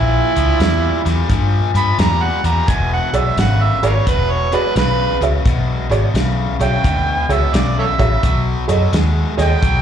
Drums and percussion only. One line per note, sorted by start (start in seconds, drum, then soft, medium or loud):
0.36 closed hi-hat medium
0.60 snare loud
0.60 closed hi-hat medium
1.06 snare soft
1.06 closed hi-hat medium
1.30 kick loud
1.30 closed hi-hat medium
1.75 closed hi-hat medium
1.99 snare loud
1.99 closed hi-hat medium
2.44 closed hi-hat medium
2.68 kick loud
2.68 closed hi-hat loud
3.14 closed hi-hat medium
3.38 snare loud
3.38 closed hi-hat medium
3.83 closed hi-hat medium
4.07 kick loud
4.07 closed hi-hat medium
4.52 closed hi-hat medium
4.76 snare loud
4.76 closed hi-hat medium
5.22 closed hi-hat medium
5.46 kick loud
5.46 closed hi-hat medium
5.92 closed hi-hat medium
6.15 snare loud
6.15 closed hi-hat medium
6.61 closed hi-hat medium
6.84 kick loud
6.84 closed hi-hat medium
7.30 closed hi-hat medium
7.54 snare loud
7.54 closed hi-hat medium
8.00 kick medium
8.00 closed hi-hat medium
8.23 kick loud
8.23 closed hi-hat medium
8.69 closed hi-hat medium
8.93 snare loud
8.93 closed hi-hat medium
9.39 snare soft
9.39 closed hi-hat medium
9.63 kick loud
9.63 closed hi-hat medium